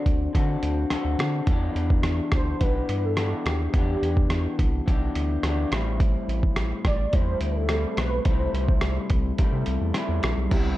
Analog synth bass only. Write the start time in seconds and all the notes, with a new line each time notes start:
0.06 D2
0.34 D3
0.63 D2
0.91 D2
1.05 D2
1.19 D3
1.47 E2
1.75 E2
2.32 D2
2.61 B1
2.89 G2
3.46 D#2
3.74 E2
4.02 E2
4.59 C2
4.88 B1
5.16 D2
5.43 D2
5.72 A1
6.28 A1
6.85 A1
7.13 E2
7.40 D2
7.97 B1
8.26 C2
8.53 C2
9.10 C2
9.52 C3
9.67 C2
9.81 E2
10.09 E2
10.23 A#1
10.37 B1
10.52 C2